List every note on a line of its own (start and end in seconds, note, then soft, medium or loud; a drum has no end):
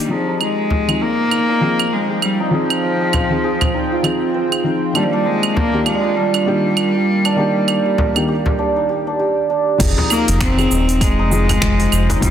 0.00 0.95 G4 medium
0.00 2.32 A#4 medium
0.00 0.16 D5 medium
0.04 0.83 F3 medium
0.04 0.12 G3 medium
0.10 0.40 F3 medium
0.10 4.91 F3 medium
0.10 0.84 C4 medium
0.10 4.91 C4 medium
0.10 0.28 D#4 medium
0.10 0.85 D#4 medium
0.10 4.91 F4 medium
0.10 0.85 G#4 medium
0.10 4.91 G5 medium
0.28 0.40 D#4 medium
0.40 1.03 G#3 medium
0.40 1.01 D#4 medium
0.40 claves medium
0.70 frame drum medium
0.88 1.04 F3 medium
0.88 1.04 C4 medium
0.88 1.04 D#4 medium
0.88 2.10 G#4 medium
0.88 1.05 G#4 medium
0.88 claves medium
1.01 1.94 A#3 loud
1.01 1.31 D#4 medium
1.31 1.49 D#4 medium
1.31 claves medium
1.49 2.40 D#4 medium
1.61 1.81 F3 medium
1.61 1.81 C4 medium
1.61 1.82 D#4 medium
1.61 1.82 G#4 medium
1.79 claves medium
1.93 2.22 G#3 medium
2.10 3.01 G#4 medium
2.22 2.36 G3 medium
2.22 claves medium
2.40 2.52 D#4 medium
2.51 3.26 F3 medium
2.51 4.31 F3 medium
2.51 3.26 C4 medium
2.51 3.74 D#4 medium
2.51 3.27 D#4 medium
2.51 3.28 G#4 medium
2.70 claves medium
2.83 4.04 D#5 medium
3.01 3.43 G#4 medium
3.13 4.34 C5 medium
3.13 frame drum medium
3.13 claves medium
3.30 3.46 F3 medium
3.30 3.46 C4 medium
3.30 3.47 D#4 medium
3.30 3.47 G#4 medium
3.44 5.80 G#4 medium
3.61 frame drum medium
3.61 claves medium
3.74 5.01 D#4 medium
3.92 7.28 F4 medium
4.03 4.61 F3 medium
4.03 4.61 C4 medium
4.03 4.62 D#4 medium
4.03 4.62 G#4 medium
4.03 5.01 D#5 medium
4.03 claves medium
4.34 6.98 C5 medium
4.52 claves medium
4.64 4.91 F3 medium
4.64 4.92 C4 medium
4.64 4.92 D#4 medium
4.64 4.92 G#4 medium
4.93 5.68 D#3 medium
4.93 8.55 D#3 medium
4.93 5.05 G3 medium
4.93 5.69 A#3 medium
4.93 8.55 A#3 medium
4.93 5.13 D4 medium
4.93 5.69 D4 medium
4.93 7.35 F4 medium
4.93 8.55 G4 medium
4.93 5.70 G4 medium
4.93 claves medium
5.03 5.13 F3 medium
5.11 5.26 G3 medium
5.11 5.25 D4 medium
5.25 5.57 G#3 medium
5.25 5.86 D4 medium
5.43 claves medium
5.56 5.85 A#3 loud
5.56 frame drum medium
5.73 5.89 D#3 medium
5.73 5.89 A#3 medium
5.73 5.89 D4 medium
5.73 6.94 G4 medium
5.73 5.90 G4 medium
5.86 6.17 G#3 medium
5.86 6.16 D4 medium
5.86 claves medium
6.16 8.59 G3 medium
6.16 6.34 D4 medium
6.34 7.25 D4 medium
6.34 claves medium
6.46 6.66 D#3 medium
6.46 6.66 A#3 medium
6.46 6.67 D4 medium
6.46 6.67 G4 medium
6.77 claves medium
6.95 7.85 G4 medium
7.25 7.37 D4 medium
7.25 claves medium
7.36 8.11 D#3 medium
7.36 8.11 A#3 medium
7.36 8.58 D4 medium
7.36 8.12 D4 medium
7.40 8.13 G4 loud
7.68 8.82 D5 medium
7.68 claves medium
7.86 8.28 G4 medium
7.98 10.81 A#4 medium
7.98 frame drum medium
8.15 8.31 D#3 medium
8.15 8.31 A#3 medium
8.15 8.32 D4 medium
8.15 8.32 G4 medium
8.15 claves medium
8.28 8.89 G4 medium
8.46 frame drum medium
8.59 8.82 D4 medium
8.76 9.13 D#4 medium
8.89 9.19 G4 medium
9.07 9.49 D4 medium
9.19 10.64 G4 medium
9.50 9.86 D4 medium
9.78 9.94 F1 loud
9.78 10.53 F3 medium
9.78 10.54 C4 medium
9.78 12.30 C4 medium
9.78 9.97 D#4 medium
9.78 10.54 D#4 medium
9.78 12.30 F4 medium
9.78 10.55 G#4 loud
9.78 12.30 C5 medium
9.78 12.20 D#5 medium
9.78 kick loud
9.78 open hi-hat medium
9.78 crash loud
9.78 cabasa soft
9.98 10.10 D#4 loud
9.98 frame drum medium
10.10 10.38 A#3 loud
10.10 10.71 D#4 medium
10.10 cabasa medium
10.10 claves medium
10.28 10.67 F1 loud
10.28 open hi-hat soft
10.28 cabasa soft
10.40 11.03 C4 loud
10.40 finger snap loud
10.40 kick loud
10.40 open hi-hat medium
10.40 cabasa soft
10.57 10.73 F3 medium
10.57 10.74 C4 medium
10.57 10.74 D#4 medium
10.57 11.79 G#4 medium
10.57 10.74 G#4 medium
10.57 cabasa soft
10.57 claves medium
10.71 11.21 D#1 medium
10.71 11.01 D#4 medium
10.71 cabasa medium
10.89 open hi-hat soft
10.89 cabasa soft
11.01 12.22 G#3 loud
11.01 11.19 D#4 medium
11.01 kick loud
11.01 open hi-hat medium
11.01 cabasa soft
11.01 claves medium
11.19 11.58 F1 medium
11.19 12.10 D#4 loud
11.31 11.51 F3 medium
11.31 11.51 C4 medium
11.31 11.52 D#4 medium
11.31 11.52 G#4 loud
11.31 cabasa medium
11.49 open hi-hat soft
11.49 frame drum medium
11.49 cabasa soft
11.49 claves medium
11.62 11.87 F1 loud
11.62 finger snap loud
11.62 kick loud
11.62 open hi-hat medium
11.62 cabasa soft
11.80 12.30 G#4 medium
11.80 open hi-hat soft
11.92 12.17 F1 medium
11.92 cabasa medium
11.92 claves medium
12.10 12.22 D#4 loud
12.10 open hi-hat soft
12.10 frame drum medium
12.10 cabasa soft
12.20 12.30 F1 loud
12.20 12.30 F3 loud
12.20 12.30 G3 loud
12.20 12.30 C4 medium
12.20 12.30 D#4 medium
12.20 kick loud
12.20 open hi-hat medium
12.20 cabasa soft
12.24 12.30 F4 loud